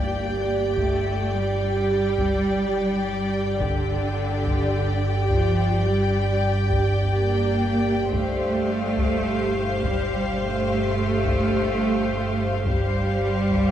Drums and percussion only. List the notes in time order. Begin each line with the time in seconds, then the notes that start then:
0.77 taiko
2.18 taiko
3.61 taiko
4.45 taiko
5.30 taiko
6.71 taiko
8.13 taiko
8.98 taiko
9.83 taiko
11.25 taiko
12.66 taiko
13.51 taiko